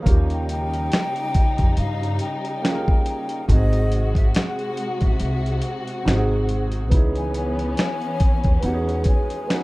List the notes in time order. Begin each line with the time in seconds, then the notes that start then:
0.02 D#2 C#3 G3 A#3 C#4 D#4, kick
0.07 F4 G4, closed hi-hat
0.30 G5, closed hi-hat
0.49 G5, closed hi-hat
0.74 closed hi-hat
0.92 finger snap, snare, closed hi-hat
1.16 closed hi-hat
1.34 kick, closed hi-hat
1.58 F2, kick, closed hi-hat
1.77 G2 F5, closed hi-hat
2.03 closed hi-hat
2.19 G5, closed hi-hat
2.45 closed hi-hat
2.62 A#3 C#4, finger snap, snare, closed hi-hat
2.66 F4 G#4
2.75 A#4
2.88 kick
3.06 closed hi-hat
3.29 closed hi-hat
3.48 G#1 C3 G#3 A3 D#4 F#4 D#5, kick, closed hi-hat
3.52 C4 F#4 G#4
3.73 closed hi-hat
3.92 closed hi-hat
4.15 E5, kick, closed hi-hat
4.35 F#5, finger snap, snare, closed hi-hat
4.59 closed hi-hat
4.77 closed hi-hat
5.01 A1 E5, kick, closed hi-hat
5.20 C2, closed hi-hat
5.46 closed hi-hat
5.62 F#5, closed hi-hat
5.88 closed hi-hat
6.03 G#1 G#3 C4 D#4
6.08 F#4 G4, finger snap, snare, closed hi-hat
6.16 G#4
6.49 closed hi-hat
6.72 closed hi-hat
6.89 C#2 E3 B3 C#4 D#4, kick, closed hi-hat
6.94 E4 G#4
7.15 G#5, closed hi-hat
7.34 G#5, closed hi-hat
7.59 closed hi-hat
7.77 finger snap, snare, closed hi-hat
8.02 closed hi-hat
8.20 kick, closed hi-hat
8.44 D#2, kick, closed hi-hat
8.60 E2 G#3 B3 D#4 F#5, closed hi-hat
8.65 F#4 G4
8.74 G#4
8.89 closed hi-hat
9.04 G#5, kick, closed hi-hat
9.30 closed hi-hat
9.47 B3 D#4, finger snap, snare, closed hi-hat
9.52 F#4 B4